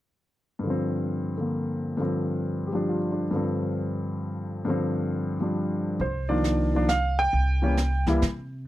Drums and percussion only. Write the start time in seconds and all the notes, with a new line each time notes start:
6.00 brush sweep
6.44 snare, hi-hat pedal
6.88 snare, hi-hat pedal
7.33 brush sweep
7.77 snare, hi-hat pedal
8.06 kick, snare
8.22 snare, hi-hat pedal